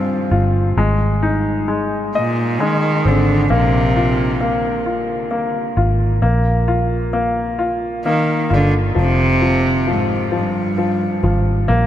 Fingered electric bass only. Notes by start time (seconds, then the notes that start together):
0.31 G1
0.77 G#1
3.06 G#1
3.50 A#1
5.77 G#1
6.22 A#1
8.51 G1
8.96 F1
11.24 G#1
11.69 A#1